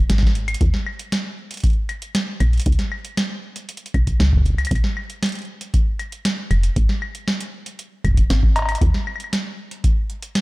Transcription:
0.10 0.56 G#1 loud
0.10 snare loud
0.10 closed hi-hat medium
0.18 snare medium
0.22 kick loud
0.27 snare medium
0.35 closed hi-hat medium
0.48 closed hi-hat medium
0.48 high woodblock medium
0.54 closed hi-hat medium
0.61 0.70 D#2 loud
0.61 kick loud
0.61 closed hi-hat medium
0.74 snare medium
0.86 high woodblock medium
0.99 closed hi-hat medium
1.12 snare loud
1.12 closed hi-hat medium
1.51 closed hi-hat medium
1.54 closed hi-hat soft
1.57 closed hi-hat soft
1.60 kick loud
1.60 closed hi-hat soft
1.64 closed hi-hat medium
1.67 closed hi-hat soft
1.70 closed hi-hat soft
1.73 closed hi-hat soft
1.89 closed hi-hat soft
1.89 high woodblock medium
2.02 closed hi-hat medium
2.15 snare loud
2.15 closed hi-hat medium
2.40 2.59 A#1 medium
2.40 closed hi-hat medium
2.40 high woodblock medium
2.53 closed hi-hat soft
2.57 closed hi-hat soft
2.60 closed hi-hat medium
2.62 closed hi-hat soft
2.66 2.76 C#2 loud
2.66 kick loud
2.66 closed hi-hat medium
2.72 closed hi-hat soft
2.79 snare medium
2.79 closed hi-hat soft
2.92 high woodblock medium
3.05 closed hi-hat medium
3.17 snare loud
3.17 closed hi-hat medium
3.56 closed hi-hat medium
3.69 closed hi-hat medium
3.77 closed hi-hat medium
3.86 closed hi-hat soft
3.94 4.13 B1 medium
3.94 kick medium
3.94 closed hi-hat soft
3.94 high woodblock soft
4.07 kick medium
4.07 closed hi-hat medium
4.20 4.66 C#2 loud
4.20 snare loud
4.33 kick loud
4.37 kick loud
4.41 kick medium
4.46 kick medium
4.46 closed hi-hat medium
4.50 kick medium
4.54 kick soft
4.58 closed hi-hat soft
4.58 high woodblock medium
4.65 closed hi-hat medium
4.67 closed hi-hat soft
4.67 high woodblock medium
4.71 4.81 A#1 loud
4.71 kick loud
4.71 closed hi-hat medium
4.75 closed hi-hat soft
4.75 high woodblock soft
4.84 snare medium
4.97 high woodblock medium
5.10 closed hi-hat medium
5.23 snare loud
5.23 closed hi-hat medium
5.26 closed hi-hat medium
5.29 closed hi-hat soft
5.32 closed hi-hat soft
5.35 closed hi-hat soft
5.39 closed hi-hat soft
5.42 closed hi-hat soft
5.45 closed hi-hat soft
5.61 closed hi-hat medium
5.74 kick loud
5.74 closed hi-hat medium
5.99 closed hi-hat soft
5.99 high woodblock soft
6.12 closed hi-hat medium
6.25 snare loud
6.25 closed hi-hat medium
6.51 6.70 F1 medium
6.51 closed hi-hat medium
6.51 high woodblock medium
6.63 closed hi-hat soft
6.76 6.86 G#1 loud
6.76 kick loud
6.76 closed hi-hat medium
6.89 snare medium
7.02 high woodblock medium
7.15 closed hi-hat medium
7.28 snare loud
7.40 closed hi-hat medium
7.66 closed hi-hat soft
7.79 closed hi-hat medium
8.04 8.23 F#1 loud
8.04 kick soft
8.04 closed hi-hat soft
8.04 high woodblock soft
8.08 kick soft
8.11 kick medium
8.14 kick medium
8.17 kick medium
8.17 closed hi-hat soft
8.30 8.76 G#1 loud
8.30 snare loud
8.30 closed hi-hat medium
8.43 kick loud
8.56 closed hi-hat medium
8.56 cowbell medium
8.59 cowbell medium
8.62 cowbell medium
8.65 closed hi-hat soft
8.65 cowbell soft
8.69 cowbell soft
8.69 high woodblock medium
8.72 closed hi-hat medium
8.72 cowbell soft
8.75 cowbell soft
8.78 8.91 D#2 loud
8.78 kick loud
8.78 closed hi-hat medium
8.78 cowbell soft
8.94 snare medium
9.07 high woodblock medium
9.16 high woodblock soft
9.20 closed hi-hat soft
9.24 high woodblock soft
9.33 snare loud
9.33 closed hi-hat medium
9.71 closed hi-hat soft
9.84 kick loud
9.84 closed hi-hat medium
10.10 closed hi-hat soft
10.22 closed hi-hat medium
10.35 snare loud
10.35 closed hi-hat medium

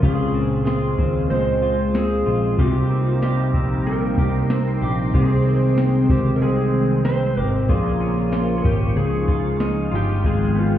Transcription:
0.00 0.95 C#2 loud
0.00 2.54 A#2 medium
0.00 2.58 C#3 medium
0.00 2.55 G#3 medium
0.00 2.56 C4 medium
0.00 0.34 C#4 medium
0.00 2.54 F4 medium
0.00 0.65 F4 medium
0.00 2.56 G#4 medium
0.00 kick loud
0.00 closed hi-hat medium
0.04 0.64 G#4 loud
0.34 0.98 C4 medium
0.65 1.61 F4 medium
0.65 1.26 G#4 medium
0.65 snare medium
0.65 closed hi-hat medium
0.65 tambourine medium
0.98 1.29 D#2 medium
0.98 1.94 C4 medium
0.98 kick medium
1.30 2.23 C#2 loud
1.30 2.65 G#3 medium
1.30 1.96 C5 loud
1.30 closed hi-hat medium
1.62 2.25 F4 medium
1.94 2.90 C4 medium
1.94 2.59 G#4 loud
1.94 snare loud
1.94 closed hi-hat medium
1.94 tambourine medium
2.26 2.57 A#1 medium
2.26 2.58 F4 medium
2.58 3.54 C2 loud
2.58 5.13 C3 loud
2.58 5.11 C3 medium
2.58 5.11 G3 medium
2.58 5.11 A#3 medium
2.58 5.11 D#4 medium
2.58 3.22 G4 medium
2.58 3.09 G4 medium
2.58 7.65 G5 medium
2.58 5.02 A#5 medium
2.58 kick loud
2.58 closed hi-hat medium
2.91 3.54 C4 medium
3.09 3.21 F4 medium
3.22 3.88 G4 medium
3.22 4.18 G4 medium
3.22 snare loud
3.22 closed hi-hat medium
3.22 tambourine medium
3.54 4.15 A#1 loud
3.54 4.50 C4 medium
3.54 kick medium
3.86 5.20 A#3 medium
3.86 4.78 A#4 medium
3.86 5.42 C6 medium
3.86 closed hi-hat medium
4.17 4.78 C2 medium
4.17 4.82 G4 medium
4.17 kick medium
4.50 5.45 C4 medium
4.50 snare loud
4.50 closed hi-hat medium
4.50 tambourine medium
4.82 5.12 A#1 medium
4.82 6.44 G4 medium
5.14 6.06 C2 loud
5.14 7.68 C3 medium
5.14 7.66 D#3 medium
5.14 7.66 G#3 medium
5.14 7.66 C4 medium
5.14 6.10 G#4 medium
5.14 7.66 C5 medium
5.14 kick loud
5.14 closed hi-hat medium
5.46 6.08 C4 medium
5.77 snare medium
5.77 closed hi-hat medium
5.77 tambourine medium
6.09 6.40 C#2 medium
6.09 7.04 C4 medium
6.09 6.33 G4 medium
6.09 kick loud
6.36 6.41 A#4 medium
6.41 7.39 C2 medium
6.41 7.75 G#3 medium
6.41 7.01 G#4 loud
6.41 closed hi-hat medium
7.05 7.75 C4 medium
7.05 7.49 C5 loud
7.05 snare loud
7.05 closed hi-hat medium
7.05 tambourine medium
7.37 7.67 G#1 medium
7.37 7.69 G4 medium
7.68 8.61 A#1 loud
7.68 8.96 A#2 medium
7.68 10.21 C#3 medium
7.68 10.21 F3 medium
7.68 8.95 A#3 medium
7.68 8.95 F4 medium
7.68 8.32 F4 medium
7.68 8.57 G#4 medium
7.68 8.95 A#4 medium
7.68 kick loud
7.68 closed hi-hat medium
8.00 8.63 C#4 medium
8.00 9.25 C#6 medium
8.32 9.28 F4 medium
8.32 snare loud
8.32 closed hi-hat medium
8.32 tambourine medium
8.58 8.65 G#4 medium
8.64 8.95 G#1 medium
8.64 9.03 C#4 medium
8.64 8.96 G4 medium
8.64 kick medium
8.96 9.27 C#2 medium
8.96 10.30 C#3 medium
8.96 10.23 G#3 medium
8.96 10.22 D#4 medium
8.96 10.23 F4 medium
8.96 9.88 G#4 medium
8.96 10.52 F6 medium
8.96 closed hi-hat medium
9.28 9.89 C#2 medium
9.28 9.91 F4 medium
9.28 kick medium
9.60 10.78 D#4 medium
9.60 10.52 G5 medium
9.60 snare loud
9.60 closed hi-hat medium
9.60 tambourine medium
9.91 10.23 G1 medium
9.91 10.24 F4 medium
9.91 10.26 G4 loud
10.24 10.78 G#1 medium
10.24 10.78 D#3 medium
10.24 10.78 F3 medium
10.24 10.78 G#3 medium
10.24 10.78 B3 medium
10.24 10.78 F4 medium
10.24 10.58 G#4 medium
10.24 kick loud
10.24 closed hi-hat medium
10.55 10.78 B3 medium
10.55 10.78 B5 medium
10.59 10.78 F4 medium

